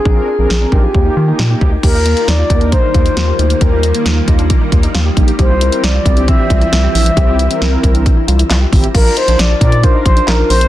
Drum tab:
CC |----------------|x---------------|----------------|----------------|
HH |----------------|x-xxx-xxx-xxx-xx|x-xxx-xxx-xxx-xx|x-xxx-xxx-xxx-ox|
CP |----------------|----------------|----------------|----------------|
SD |----o-------o---|----o-------o---|----o-------o---|----o-------o---|
BD |o-----o-o-----o-|o-----o-o-o-----|o-----o-o-o---o-|o-----o-o-o-----|

CC |----------------|x---------------|
HH |x-xxx-xxx-xxx-ox|x-xxx-xxx-xxx-ox|
CP |------------x---|------------x---|
SD |----o-------o---|----o-------o---|
BD |o-----o-o-----o-|o-----o-o-o-----|